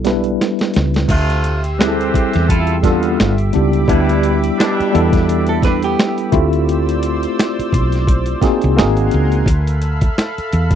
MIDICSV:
0, 0, Header, 1, 8, 480
1, 0, Start_track
1, 0, Tempo, 697674
1, 751, Time_signature, 4, 2, 24, 8
1, 7397, End_track
2, 0, Start_track
2, 0, Title_t, "Analog synth pad"
2, 0, Program_c, 0, 89
2, 749, Note_on_c, 0, 84, 73
2, 751, Note_on_c, 0, 67, 82
2, 752, Note_on_c, 0, 76, 79
2, 752, Note_on_c, 0, 88, 83
2, 2176, Note_off_c, 0, 67, 0
2, 2176, Note_off_c, 0, 84, 0
2, 2177, Note_off_c, 0, 88, 0
2, 2188, Note_on_c, 0, 83, 66
2, 2189, Note_on_c, 0, 67, 72
2, 2190, Note_on_c, 0, 86, 88
2, 2652, Note_off_c, 0, 76, 0
2, 2671, Note_on_c, 0, 76, 79
2, 4328, Note_off_c, 0, 67, 0
2, 4328, Note_off_c, 0, 83, 0
2, 4328, Note_off_c, 0, 86, 0
2, 4334, Note_off_c, 0, 76, 0
2, 4354, Note_on_c, 0, 74, 72
2, 4355, Note_on_c, 0, 72, 81
2, 4355, Note_on_c, 0, 88, 78
2, 6016, Note_off_c, 0, 72, 0
2, 6016, Note_off_c, 0, 74, 0
2, 6016, Note_off_c, 0, 88, 0
2, 6029, Note_on_c, 0, 78, 69
2, 6030, Note_on_c, 0, 80, 67
2, 6030, Note_on_c, 0, 84, 84
2, 6031, Note_on_c, 0, 70, 74
2, 6505, Note_off_c, 0, 78, 0
2, 6505, Note_off_c, 0, 80, 0
2, 6506, Note_off_c, 0, 70, 0
2, 6506, Note_off_c, 0, 84, 0
2, 6507, Note_on_c, 0, 69, 77
2, 6507, Note_on_c, 0, 77, 74
2, 6508, Note_on_c, 0, 76, 75
2, 6509, Note_on_c, 0, 83, 90
2, 7397, Note_off_c, 0, 69, 0
2, 7397, Note_off_c, 0, 76, 0
2, 7397, Note_off_c, 0, 77, 0
2, 7397, Note_off_c, 0, 83, 0
2, 7397, End_track
3, 0, Start_track
3, 0, Title_t, "Hollow-body jazz guitar"
3, 0, Program_c, 1, 26
3, 3778, Note_on_c, 1, 69, 74
3, 3871, Note_off_c, 1, 69, 0
3, 3884, Note_on_c, 1, 71, 89
3, 3890, Note_on_c, 1, 62, 76
3, 4007, Note_off_c, 1, 71, 0
3, 4010, Note_off_c, 1, 62, 0
3, 4019, Note_on_c, 1, 67, 72
3, 4023, Note_on_c, 1, 59, 60
3, 4340, Note_off_c, 1, 67, 0
3, 4342, Note_off_c, 1, 59, 0
3, 7397, End_track
4, 0, Start_track
4, 0, Title_t, "Tine electric piano"
4, 0, Program_c, 2, 4
4, 0, Control_c, 2, 64, 127
4, 0, Note_on_c, 2, 55, 72
4, 0, Note_on_c, 2, 59, 61
4, 0, Note_on_c, 2, 62, 68
4, 0, Note_on_c, 2, 64, 65
4, 0, Note_on_c, 2, 69, 84
4, 32, Note_off_c, 2, 55, 0
4, 32, Note_on_c, 2, 55, 76
4, 35, Note_off_c, 2, 59, 0
4, 35, Note_on_c, 2, 59, 61
4, 39, Note_off_c, 2, 62, 0
4, 39, Note_on_c, 2, 62, 64
4, 43, Note_off_c, 2, 64, 0
4, 43, Note_on_c, 2, 64, 67
4, 47, Note_on_c, 2, 71, 80
4, 209, Note_off_c, 2, 55, 0
4, 210, Note_off_c, 2, 59, 0
4, 212, Note_off_c, 2, 62, 0
4, 214, Note_off_c, 2, 64, 0
4, 216, Note_off_c, 2, 71, 0
4, 759, Control_c, 2, 64, 0
4, 762, Note_off_c, 2, 69, 0
4, 872, Control_c, 2, 64, 127
4, 1230, Note_on_c, 2, 55, 67
4, 1235, Note_on_c, 2, 60, 64
4, 1239, Note_on_c, 2, 64, 63
4, 1243, Note_on_c, 2, 67, 66
4, 1247, Note_on_c, 2, 68, 60
4, 1290, Note_off_c, 2, 68, 0
4, 1292, Note_on_c, 2, 69, 78
4, 1909, Note_off_c, 2, 55, 0
4, 1911, Note_off_c, 2, 60, 0
4, 1913, Note_off_c, 2, 64, 0
4, 1915, Note_off_c, 2, 67, 0
4, 1940, Note_off_c, 2, 69, 0
4, 1946, Note_on_c, 2, 55, 72
4, 1948, Note_on_c, 2, 59, 77
4, 1952, Note_on_c, 2, 62, 68
4, 1957, Note_on_c, 2, 65, 67
4, 1960, Note_on_c, 2, 69, 84
4, 2200, Control_c, 2, 64, 0
4, 2297, Note_off_c, 2, 55, 0
4, 2298, Note_off_c, 2, 59, 0
4, 2300, Note_off_c, 2, 62, 0
4, 2302, Note_off_c, 2, 65, 0
4, 2304, Note_off_c, 2, 69, 0
4, 2328, Control_c, 2, 64, 127
4, 2429, Note_on_c, 2, 55, 66
4, 2431, Note_on_c, 2, 59, 62
4, 2436, Note_on_c, 2, 62, 67
4, 2440, Note_on_c, 2, 64, 60
4, 2445, Note_on_c, 2, 67, 79
4, 2658, Note_off_c, 2, 55, 0
4, 2662, Note_off_c, 2, 59, 0
4, 2666, Note_off_c, 2, 62, 0
4, 2666, Note_on_c, 2, 55, 73
4, 2670, Note_off_c, 2, 64, 0
4, 2671, Note_on_c, 2, 59, 65
4, 2674, Note_off_c, 2, 67, 0
4, 2674, Note_on_c, 2, 62, 67
4, 2678, Note_on_c, 2, 64, 69
4, 2681, Control_c, 2, 64, 0
4, 2682, Note_on_c, 2, 67, 81
4, 2796, Control_c, 2, 64, 127
4, 2846, Note_off_c, 2, 55, 0
4, 2848, Note_off_c, 2, 59, 0
4, 2850, Note_off_c, 2, 62, 0
4, 2852, Note_off_c, 2, 64, 0
4, 2854, Note_off_c, 2, 67, 0
4, 3388, Note_on_c, 2, 55, 79
4, 3394, Note_on_c, 2, 59, 77
4, 3397, Note_on_c, 2, 62, 68
4, 3401, Note_on_c, 2, 64, 73
4, 3405, Note_on_c, 2, 69, 92
4, 3567, Note_off_c, 2, 55, 0
4, 3570, Note_off_c, 2, 59, 0
4, 3571, Note_off_c, 2, 62, 0
4, 3573, Note_off_c, 2, 64, 0
4, 3575, Note_off_c, 2, 69, 0
4, 4347, Note_on_c, 2, 57, 84
4, 4351, Note_on_c, 2, 60, 73
4, 4356, Note_on_c, 2, 64, 79
4, 4358, Control_c, 2, 64, 0
4, 4360, Note_on_c, 2, 65, 74
4, 4364, Note_on_c, 2, 67, 84
4, 4462, Control_c, 2, 64, 127
4, 5123, Note_off_c, 2, 57, 0
4, 5125, Note_off_c, 2, 60, 0
4, 5127, Note_off_c, 2, 64, 0
4, 5130, Note_off_c, 2, 65, 0
4, 5132, Note_off_c, 2, 67, 0
4, 5788, Note_on_c, 2, 58, 77
4, 5793, Note_on_c, 2, 60, 74
4, 5795, Note_on_c, 2, 63, 69
4, 5800, Note_on_c, 2, 66, 79
4, 5803, Note_on_c, 2, 68, 88
4, 6022, Note_off_c, 2, 58, 0
4, 6026, Note_off_c, 2, 60, 0
4, 6030, Note_off_c, 2, 63, 0
4, 6030, Note_on_c, 2, 58, 79
4, 6034, Note_on_c, 2, 60, 60
4, 6035, Note_off_c, 2, 66, 0
4, 6038, Note_off_c, 2, 68, 0
4, 6038, Note_on_c, 2, 63, 66
4, 6040, Control_c, 2, 64, 0
4, 6043, Note_on_c, 2, 66, 67
4, 6046, Note_on_c, 2, 68, 84
4, 6168, Control_c, 2, 64, 127
4, 6325, Note_off_c, 2, 58, 0
4, 6327, Note_off_c, 2, 60, 0
4, 6329, Note_off_c, 2, 63, 0
4, 6331, Note_off_c, 2, 66, 0
4, 6333, Note_off_c, 2, 68, 0
4, 6519, Control_c, 2, 64, 0
4, 6624, Control_c, 2, 64, 127
4, 7397, End_track
5, 0, Start_track
5, 0, Title_t, "Horn section"
5, 0, Program_c, 3, 61
5, 748, Note_on_c, 3, 48, 92
5, 749, Note_on_c, 3, 57, 92
5, 749, Note_on_c, 3, 65, 109
5, 1103, Note_off_c, 3, 48, 0
5, 1103, Note_off_c, 3, 57, 0
5, 1103, Note_off_c, 3, 65, 0
5, 1230, Note_on_c, 3, 52, 82
5, 1230, Note_on_c, 3, 60, 81
5, 1231, Note_on_c, 3, 67, 84
5, 1683, Note_off_c, 3, 52, 0
5, 1683, Note_off_c, 3, 60, 0
5, 1683, Note_off_c, 3, 67, 0
5, 1710, Note_on_c, 3, 69, 94
5, 1711, Note_on_c, 3, 64, 89
5, 1711, Note_on_c, 3, 65, 80
5, 1902, Note_off_c, 3, 69, 0
5, 1903, Note_off_c, 3, 64, 0
5, 1903, Note_off_c, 3, 65, 0
5, 1948, Note_on_c, 3, 59, 73
5, 1948, Note_on_c, 3, 65, 84
5, 1949, Note_on_c, 3, 50, 74
5, 2303, Note_off_c, 3, 50, 0
5, 2303, Note_off_c, 3, 59, 0
5, 2303, Note_off_c, 3, 65, 0
5, 2670, Note_on_c, 3, 55, 99
5, 2671, Note_on_c, 3, 47, 90
5, 2671, Note_on_c, 3, 64, 101
5, 3024, Note_off_c, 3, 47, 0
5, 3024, Note_off_c, 3, 55, 0
5, 3024, Note_off_c, 3, 64, 0
5, 3149, Note_on_c, 3, 55, 92
5, 3150, Note_on_c, 3, 47, 91
5, 3150, Note_on_c, 3, 62, 106
5, 3842, Note_off_c, 3, 55, 0
5, 3843, Note_off_c, 3, 47, 0
5, 3843, Note_off_c, 3, 62, 0
5, 7397, End_track
6, 0, Start_track
6, 0, Title_t, "Fretless electric bass"
6, 0, Program_c, 4, 35
6, 0, Note_on_c, 4, 35, 81
6, 249, Note_off_c, 4, 35, 0
6, 526, Note_on_c, 4, 37, 85
6, 729, Note_off_c, 4, 37, 0
6, 756, Note_on_c, 4, 38, 90
6, 1446, Note_off_c, 4, 38, 0
6, 1621, Note_on_c, 4, 40, 94
6, 2170, Note_off_c, 4, 40, 0
6, 2204, Note_on_c, 4, 31, 98
6, 2408, Note_off_c, 4, 31, 0
6, 2447, Note_on_c, 4, 37, 80
6, 2649, Note_off_c, 4, 37, 0
6, 2677, Note_on_c, 4, 38, 96
6, 3094, Note_off_c, 4, 38, 0
6, 3405, Note_on_c, 4, 40, 97
6, 4090, Note_off_c, 4, 40, 0
6, 4360, Note_on_c, 4, 38, 97
6, 4985, Note_off_c, 4, 38, 0
6, 5323, Note_on_c, 4, 35, 85
6, 5737, Note_off_c, 4, 35, 0
6, 5944, Note_on_c, 4, 36, 87
6, 6048, Note_on_c, 4, 32, 104
6, 6059, Note_off_c, 4, 36, 0
6, 6250, Note_off_c, 4, 32, 0
6, 6289, Note_on_c, 4, 37, 92
6, 6490, Note_off_c, 4, 37, 0
6, 6518, Note_on_c, 4, 38, 108
6, 6934, Note_off_c, 4, 38, 0
6, 7246, Note_on_c, 4, 40, 91
6, 7397, Note_off_c, 4, 40, 0
6, 7397, End_track
7, 0, Start_track
7, 0, Title_t, "Muted fretless electric bass strokes"
7, 1483, Note_on_c, 9, 29, 45
7, 1552, Note_off_c, 9, 29, 0
7, 3304, Note_on_c, 9, 29, 46
7, 3372, Note_off_c, 9, 29, 0
7, 5223, Note_on_c, 9, 29, 50
7, 5292, Note_off_c, 9, 29, 0
7, 5800, Note_on_c, 9, 29, 49
7, 5869, Note_off_c, 9, 29, 0
7, 7143, Note_on_c, 9, 29, 44
7, 7212, Note_off_c, 9, 29, 0
7, 7397, End_track
8, 0, Start_track
8, 0, Title_t, "Drums"
8, 32, Note_on_c, 9, 42, 66
8, 46, Note_on_c, 9, 38, 64
8, 100, Note_off_c, 9, 42, 0
8, 115, Note_off_c, 9, 38, 0
8, 164, Note_on_c, 9, 42, 43
8, 233, Note_off_c, 9, 42, 0
8, 285, Note_on_c, 9, 38, 78
8, 287, Note_on_c, 9, 42, 67
8, 353, Note_off_c, 9, 38, 0
8, 355, Note_off_c, 9, 42, 0
8, 405, Note_on_c, 9, 42, 38
8, 421, Note_on_c, 9, 38, 79
8, 474, Note_off_c, 9, 42, 0
8, 490, Note_off_c, 9, 38, 0
8, 507, Note_on_c, 9, 42, 66
8, 525, Note_on_c, 9, 38, 93
8, 576, Note_off_c, 9, 42, 0
8, 594, Note_off_c, 9, 38, 0
8, 648, Note_on_c, 9, 42, 40
8, 662, Note_on_c, 9, 38, 81
8, 717, Note_off_c, 9, 42, 0
8, 731, Note_off_c, 9, 38, 0
8, 747, Note_on_c, 9, 36, 101
8, 748, Note_on_c, 9, 49, 104
8, 757, Note_on_c, 9, 42, 92
8, 816, Note_off_c, 9, 36, 0
8, 817, Note_off_c, 9, 49, 0
8, 826, Note_off_c, 9, 42, 0
8, 894, Note_on_c, 9, 42, 58
8, 962, Note_off_c, 9, 42, 0
8, 990, Note_on_c, 9, 42, 76
8, 1059, Note_off_c, 9, 42, 0
8, 1128, Note_on_c, 9, 42, 52
8, 1197, Note_off_c, 9, 42, 0
8, 1242, Note_on_c, 9, 38, 119
8, 1248, Note_on_c, 9, 42, 82
8, 1249, Note_on_c, 9, 26, 92
8, 1311, Note_off_c, 9, 38, 0
8, 1317, Note_off_c, 9, 26, 0
8, 1317, Note_off_c, 9, 42, 0
8, 1381, Note_on_c, 9, 42, 49
8, 1450, Note_off_c, 9, 42, 0
8, 1473, Note_on_c, 9, 36, 96
8, 1482, Note_on_c, 9, 42, 81
8, 1542, Note_off_c, 9, 36, 0
8, 1551, Note_off_c, 9, 42, 0
8, 1606, Note_on_c, 9, 42, 48
8, 1626, Note_on_c, 9, 38, 34
8, 1675, Note_off_c, 9, 42, 0
8, 1695, Note_off_c, 9, 38, 0
8, 1713, Note_on_c, 9, 36, 94
8, 1720, Note_on_c, 9, 42, 85
8, 1782, Note_off_c, 9, 36, 0
8, 1788, Note_off_c, 9, 42, 0
8, 1837, Note_on_c, 9, 42, 48
8, 1906, Note_off_c, 9, 42, 0
8, 1948, Note_on_c, 9, 36, 83
8, 1951, Note_on_c, 9, 42, 61
8, 1961, Note_on_c, 9, 38, 35
8, 2017, Note_off_c, 9, 36, 0
8, 2020, Note_off_c, 9, 42, 0
8, 2030, Note_off_c, 9, 38, 0
8, 2083, Note_on_c, 9, 42, 51
8, 2152, Note_off_c, 9, 42, 0
8, 2201, Note_on_c, 9, 38, 106
8, 2207, Note_on_c, 9, 26, 93
8, 2208, Note_on_c, 9, 42, 76
8, 2270, Note_off_c, 9, 38, 0
8, 2276, Note_off_c, 9, 26, 0
8, 2277, Note_off_c, 9, 42, 0
8, 2327, Note_on_c, 9, 42, 45
8, 2396, Note_off_c, 9, 42, 0
8, 2429, Note_on_c, 9, 42, 67
8, 2498, Note_off_c, 9, 42, 0
8, 2568, Note_on_c, 9, 42, 46
8, 2637, Note_off_c, 9, 42, 0
8, 2668, Note_on_c, 9, 36, 102
8, 2678, Note_on_c, 9, 42, 88
8, 2737, Note_off_c, 9, 36, 0
8, 2747, Note_off_c, 9, 42, 0
8, 2817, Note_on_c, 9, 42, 59
8, 2885, Note_off_c, 9, 42, 0
8, 2913, Note_on_c, 9, 42, 69
8, 2982, Note_off_c, 9, 42, 0
8, 3052, Note_on_c, 9, 42, 55
8, 3121, Note_off_c, 9, 42, 0
8, 3166, Note_on_c, 9, 38, 121
8, 3172, Note_on_c, 9, 42, 85
8, 3173, Note_on_c, 9, 26, 98
8, 3235, Note_off_c, 9, 38, 0
8, 3241, Note_off_c, 9, 26, 0
8, 3241, Note_off_c, 9, 42, 0
8, 3306, Note_on_c, 9, 42, 47
8, 3375, Note_off_c, 9, 42, 0
8, 3405, Note_on_c, 9, 42, 70
8, 3474, Note_off_c, 9, 42, 0
8, 3527, Note_on_c, 9, 36, 94
8, 3529, Note_on_c, 9, 42, 57
8, 3550, Note_on_c, 9, 38, 32
8, 3596, Note_off_c, 9, 36, 0
8, 3598, Note_off_c, 9, 42, 0
8, 3619, Note_off_c, 9, 38, 0
8, 3640, Note_on_c, 9, 42, 83
8, 3709, Note_off_c, 9, 42, 0
8, 3760, Note_on_c, 9, 42, 47
8, 3829, Note_off_c, 9, 42, 0
8, 3870, Note_on_c, 9, 36, 87
8, 3875, Note_on_c, 9, 42, 71
8, 3885, Note_on_c, 9, 38, 36
8, 3939, Note_off_c, 9, 36, 0
8, 3944, Note_off_c, 9, 42, 0
8, 3954, Note_off_c, 9, 38, 0
8, 4007, Note_on_c, 9, 42, 49
8, 4076, Note_off_c, 9, 42, 0
8, 4124, Note_on_c, 9, 38, 119
8, 4130, Note_on_c, 9, 26, 97
8, 4131, Note_on_c, 9, 42, 69
8, 4193, Note_off_c, 9, 38, 0
8, 4199, Note_off_c, 9, 26, 0
8, 4200, Note_off_c, 9, 42, 0
8, 4250, Note_on_c, 9, 42, 49
8, 4319, Note_off_c, 9, 42, 0
8, 4350, Note_on_c, 9, 42, 64
8, 4351, Note_on_c, 9, 36, 113
8, 4419, Note_off_c, 9, 42, 0
8, 4420, Note_off_c, 9, 36, 0
8, 4492, Note_on_c, 9, 42, 47
8, 4561, Note_off_c, 9, 42, 0
8, 4602, Note_on_c, 9, 42, 91
8, 4671, Note_off_c, 9, 42, 0
8, 4739, Note_on_c, 9, 42, 61
8, 4807, Note_off_c, 9, 42, 0
8, 4835, Note_on_c, 9, 42, 78
8, 4904, Note_off_c, 9, 42, 0
8, 4974, Note_on_c, 9, 42, 49
8, 5043, Note_off_c, 9, 42, 0
8, 5088, Note_on_c, 9, 38, 121
8, 5093, Note_on_c, 9, 42, 92
8, 5094, Note_on_c, 9, 26, 93
8, 5156, Note_off_c, 9, 38, 0
8, 5162, Note_off_c, 9, 42, 0
8, 5163, Note_off_c, 9, 26, 0
8, 5226, Note_on_c, 9, 42, 53
8, 5295, Note_off_c, 9, 42, 0
8, 5315, Note_on_c, 9, 36, 102
8, 5326, Note_on_c, 9, 42, 78
8, 5384, Note_off_c, 9, 36, 0
8, 5394, Note_off_c, 9, 42, 0
8, 5451, Note_on_c, 9, 42, 49
8, 5471, Note_on_c, 9, 38, 34
8, 5520, Note_off_c, 9, 42, 0
8, 5540, Note_off_c, 9, 38, 0
8, 5555, Note_on_c, 9, 36, 104
8, 5562, Note_on_c, 9, 42, 88
8, 5624, Note_off_c, 9, 36, 0
8, 5631, Note_off_c, 9, 42, 0
8, 5681, Note_on_c, 9, 42, 53
8, 5750, Note_off_c, 9, 42, 0
8, 5790, Note_on_c, 9, 36, 89
8, 5796, Note_on_c, 9, 42, 67
8, 5805, Note_on_c, 9, 38, 33
8, 5859, Note_off_c, 9, 36, 0
8, 5865, Note_off_c, 9, 42, 0
8, 5874, Note_off_c, 9, 38, 0
8, 5927, Note_on_c, 9, 42, 47
8, 5996, Note_off_c, 9, 42, 0
8, 6044, Note_on_c, 9, 38, 111
8, 6050, Note_on_c, 9, 26, 90
8, 6051, Note_on_c, 9, 42, 77
8, 6113, Note_off_c, 9, 38, 0
8, 6119, Note_off_c, 9, 26, 0
8, 6120, Note_off_c, 9, 42, 0
8, 6170, Note_on_c, 9, 42, 48
8, 6238, Note_off_c, 9, 42, 0
8, 6270, Note_on_c, 9, 42, 71
8, 6339, Note_off_c, 9, 42, 0
8, 6411, Note_on_c, 9, 42, 44
8, 6479, Note_off_c, 9, 42, 0
8, 6509, Note_on_c, 9, 36, 110
8, 6521, Note_on_c, 9, 42, 96
8, 6577, Note_off_c, 9, 36, 0
8, 6590, Note_off_c, 9, 42, 0
8, 6656, Note_on_c, 9, 42, 60
8, 6725, Note_off_c, 9, 42, 0
8, 6753, Note_on_c, 9, 42, 73
8, 6822, Note_off_c, 9, 42, 0
8, 6889, Note_on_c, 9, 42, 50
8, 6892, Note_on_c, 9, 36, 100
8, 6957, Note_off_c, 9, 42, 0
8, 6960, Note_off_c, 9, 36, 0
8, 7005, Note_on_c, 9, 38, 117
8, 7011, Note_on_c, 9, 26, 90
8, 7011, Note_on_c, 9, 42, 84
8, 7074, Note_off_c, 9, 38, 0
8, 7079, Note_off_c, 9, 42, 0
8, 7080, Note_off_c, 9, 26, 0
8, 7143, Note_on_c, 9, 42, 46
8, 7212, Note_off_c, 9, 42, 0
8, 7241, Note_on_c, 9, 42, 73
8, 7310, Note_off_c, 9, 42, 0
8, 7366, Note_on_c, 9, 36, 90
8, 7366, Note_on_c, 9, 42, 52
8, 7397, Note_off_c, 9, 36, 0
8, 7397, Note_off_c, 9, 42, 0
8, 7397, End_track
0, 0, End_of_file